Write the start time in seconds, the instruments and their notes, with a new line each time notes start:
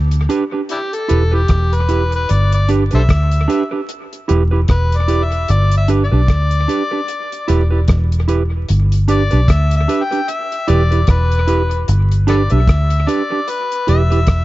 Already playing: fingered electric bass D2
0.11 closed hi-hat
0.29 clean electric guitar D4 G4 B4, closed hi-hat
0.52 clean electric guitar D4 G4 B4
0.69 harmonica D4 E4 G4, closed hi-hat
0.93 harmonica A4, closed hi-hat
1.08 fingered electric bass E1, clean electric guitar E4 G4 B4, closed hi-hat
1.31 clean electric guitar E4 G4 B4, harmonica G4
1.48 fingered electric bass E1, kick, cross-stick, closed hi-hat
1.73 harmonica B4, closed hi-hat
1.89 clean electric guitar E4 G4 B4, closed hi-hat
2.12 harmonica B4, closed hi-hat
2.29 fingered electric bass G1, harmonica D5, closed hi-hat
2.52 harmonica D5, closed hi-hat
2.69 clean electric guitar D4 G4 B4, closed hi-hat
2.91 fingered electric bass B1, clean electric guitar D4 G4 B4, harmonica A4 C5 E5, closed hi-hat
3.09 fingered electric bass D2, kick, cross-stick, closed hi-hat
3.31 closed hi-hat
3.48 clean electric guitar D4 G4 B4, closed hi-hat
3.71 clean electric guitar D4 G4 B4
3.89 closed hi-hat
4.13 closed hi-hat
4.28 fingered electric bass E1, clean electric guitar E4 G4 B4, closed hi-hat
4.51 clean electric guitar E4 G4 B4
4.68 fingered electric bass E1, harmonica B4, kick, cross-stick, closed hi-hat
4.92 closed hi-hat
4.97 harmonica D5
5.08 clean electric guitar E4 G4 B4, closed hi-hat
5.24 harmonica E5
5.32 closed hi-hat
5.48 fingered electric bass G1, harmonica D5, closed hi-hat
5.72 closed hi-hat
5.77 harmonica E5
5.88 clean electric guitar D4 G4 B4, closed hi-hat
6.05 harmonica D5
6.12 fingered electric bass B1, clean electric guitar D4 G4 B4
6.28 fingered electric bass D2, kick, cross-stick, closed hi-hat
6.51 closed hi-hat
6.68 clean electric guitar D4 G4 B4, closed hi-hat
6.91 clean electric guitar D4 G4 B4
7.08 closed hi-hat
7.32 closed hi-hat
7.48 fingered electric bass E1, clean electric guitar E4 G4 B4, closed hi-hat
7.71 clean electric guitar E4 G4 B4
7.88 fingered electric bass E1, kick, cross-stick, closed hi-hat
8.12 closed hi-hat
8.28 clean electric guitar E4 G4 B4, closed hi-hat
8.69 fingered electric bass G1, closed hi-hat
8.92 closed hi-hat
9.08 clean electric guitar D4 G4 B4, harmonica D5, closed hi-hat
9.31 fingered electric bass B1, clean electric guitar D4 G4 B4, closed hi-hat
9.48 fingered electric bass D2, harmonica E5, kick, cross-stick, closed hi-hat
9.71 closed hi-hat
9.76 harmonica E5
9.88 clean electric guitar D4 G4 B4, closed hi-hat
10.03 harmonica G5
10.11 clean electric guitar D4 G4 B4, closed hi-hat
10.28 harmonica E5, closed hi-hat
10.52 closed hi-hat
10.68 fingered electric bass E1, clean electric guitar E4 G4 B4, harmonica D5, closed hi-hat
10.91 clean electric guitar E4 G4 B4, closed hi-hat
11.07 fingered electric bass E1, harmonica B4, kick, cross-stick, closed hi-hat
11.32 closed hi-hat
11.47 clean electric guitar E4 G4 B4, closed hi-hat
11.71 closed hi-hat
11.88 fingered electric bass G1, closed hi-hat
12.11 closed hi-hat
12.27 clean electric guitar D4 G4 B4, harmonica A4 B4 D5, cross-stick, closed hi-hat
12.50 fingered electric bass B1, clean electric guitar D4 G4 B4, harmonica E5, closed hi-hat
12.68 fingered electric bass D2, kick, cross-stick, closed hi-hat
12.90 closed hi-hat
13.07 clean electric guitar D4 G4 B4, harmonica D5, closed hi-hat
13.30 clean electric guitar D4 G4 B4
13.48 harmonica B4, closed hi-hat
13.72 closed hi-hat
13.87 fingered electric bass E1, clean electric guitar E4 G4 B4, harmonica E5, closed hi-hat
14.10 clean electric guitar E4 G4 B4, closed hi-hat
14.27 fingered electric bass E1, kick, cross-stick, closed hi-hat